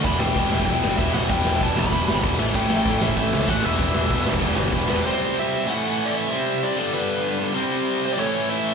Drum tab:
CC |x---x---x---x---|x---x---x---x---|x---x---x---x---|x---x---x---x---|
SD |--o---o---o---o-|--o---o---o---o-|--o---o---o---o-|--o---o---o---o-|
BD |o---o--oo---o---|o---o--oo---o---|o---o--oo---o---|o---o--oo---o---|

CC |----------------|----------------|----------------|
SD |----------------|----------------|----------------|
BD |----------------|----------------|----------------|